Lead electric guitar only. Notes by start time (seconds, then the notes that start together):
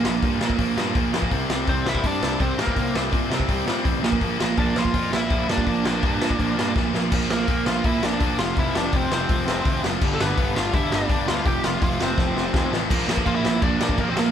1.69 C4 C5
1.88 E4 E5
2.06 D4 D5
2.41 C4 C5
2.60 A#3 A#4
4.58 D4 D5
4.78 F4 F5
5.14 E4 E5
5.50 D4 D5
7.31 A#3 A#4
7.67 F4 F5
7.86 E4 E5
8.04 D4 D5
8.39 F4 F5
8.59 E4 E5
8.76 D4 D5
8.96 C4 C5
9.13 C4 C5
10.14 A4
10.21 B3 B4
10.56 F4 F5
10.74 E4 E5
10.91 D4 D5
11.27 F4 F5
11.46 G4 G5
11.65 F4 F5
11.83 F4 F5
12.02 C4 C5
13.26 F4 F5
13.36 E4 E5
13.63 D4 D5
14.00 A#3 A#4
14.10 C4 C5
14.19 A#3 A#4